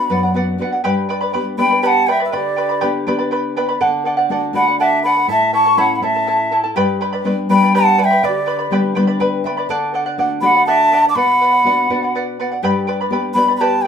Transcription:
Already playing: B3 D4 F#4 F#5 B5
0.10 F#2 B4 D5 F#5
0.23 D5 F#5
0.34 B3 D4 F#4 B4 D5 F#5
0.58 B3 D4 F#4 B4 D5 F#5
0.72 D5 F#5
0.84 G2 G4 B4 D5 G5 B5
1.09 B4 D5 G5 B5
1.21 B4 D5 B5
1.33 B3 D4 G4 B4 D5 G5 B5
1.58 B3 D4 G4 B4 D5 G5 B5
1.71 B4 D5 B5
1.83 G4 B4 D5 F#5 G5 A5 B5
2.07 B4 D5 E5 G5 B5
2.20 B4 D5 B5
2.25 B4 E5
2.32 D3 G4 B4 D5 G5 B5
2.56 B4 D5 G5 B5
2.69 B4 D5 B5
2.81 B3 D4 G4 B4 D5 G5 B5
3.07 B3 D4 G4 B4 D5 G5 B5
3.19 B4 D5 B5
3.31 B4 D5 G5 B5
3.56 B4 D5 G5 B5
3.69 B4 D5 B5
3.81 D3 A4 D5 F#5
4.05 A4 D5 F#5
4.17 D5 F#5
4.29 A3 D4 F#4 A4 D5 F#5
4.53 A3 D4 F#4 A4 D5 F#5 B5
4.68 D5 F#5
4.79 A4 D5 E5 F#5 A5
5.03 A4 D5 F#5 B5
5.16 D5 F#5
5.27 A2 E4 A4 E5 A5
5.53 E4 A4 E5 A5 C#6
5.66 E4 A4 A5
5.77 A3 C#4 E4 A4 C#5 E5 F#5 A5 B5
5.96 F#5 B5
6.01 A3 C#4 E4 A4 E5 A5
6.15 E4 A4 A5
6.27 E4 A4 E5 A5
6.51 E4 A4 E5 A5
6.64 E4 A4 A5
6.76 G2 G4 B4 D5 G5 B5
7.01 B4 D5 G5 B5
7.13 B4 D5 B5
7.24 G3 B3 D4 B4 D5 G5 B5
7.49 G3 B3 D4 B4 D5 G5 B5
7.63 B4 D5 B5
7.74 G4 B4 D5 F#5 G5 A5 B5
7.98 B4 D5 G5 A5 B5
8.03 E5 G5
8.11 B4 D5 B5
8.23 D3 B4 D5 G5 B5
8.27 G4
8.46 B4 D5 G5 B5
8.59 B4 D5 B5
8.71 G3 B3 D4 G4 B4 D5 G5 B5
8.95 G3 B3 D4 B4 D5 G5 B5
9.07 B4 D5 B5
9.20 B4 D5 G5 B5
9.44 B4 D5 E5 G5 B5
9.57 B4 D5 B5
9.69 D3 A4 D5 F#5
9.94 A4 D5 F#5
10.06 D5 F#5
10.18 A3 D4 F#4 A4 D5 F#5
10.41 A3 D4 F#4 A4 D5 F#5 B5
10.55 D5 F#5
10.66 A4 D5 E5 F#5 A5
10.92 A4 D5 F#5
11.04 D5 F#5 A5
11.09 D6
11.15 B2 B4 D5 F#5 B5
11.40 B4 D5 F#5
11.52 D5 F#5
11.64 B3 D4 F#4 B4 D5 F#5
11.89 B3 D4 F#4 B4 D5 F#5
12.02 D5 F#5
12.15 B4 D5 F#5
12.40 B4 D5 F#5
12.52 D5 F#5
12.63 G2 G4 B4 D5 G5 B5
12.87 B4 D5 G5 B5
13.01 B4 D5 B5
13.10 B3 D4 G4 B4 D5 G5 B5
13.34 B3 D4 G4 B4 D5 G5 B5
13.48 B4 D5 B5
13.56 B5
13.61 G4 B4 D5 G5 A5 B5
13.82 G5

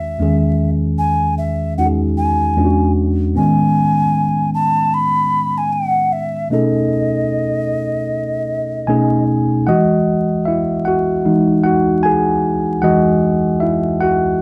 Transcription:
Already playing: E2 D#3 G#3 C#4 F#4 E5
0.19 E2 D#3 G#3 C#4 G#4
0.98 G#5
1.38 E5
1.78 E2 G#3 C#4 D#4 F#4 F#5
1.86 G#4
2.17 G#5
2.56 E2 G#3 C#4 D4 F4
2.65 F#4
3.35 A2 D#3 G#3 B3 C#4 G#5
4.54 A5
4.94 B5
5.58 G#5
5.73 F#5
6.13 E5
6.50 B2 A3 C#4 D#4 G#4 A4 D#5
8.87 B2 A3 C#4 D#4 G#4 G#5
9.67 E3 G#3 F#4 D#5 F#5
10.45 E4 E5
10.85 F#4 F#5
11.25 E3 G#3 D#4
11.63 F#4 F#5
12.03 G#4 G#5
12.82 E3 G#3 F#4 D#5 F#5
13.60 E4 E5
14.00 F#4 F#5

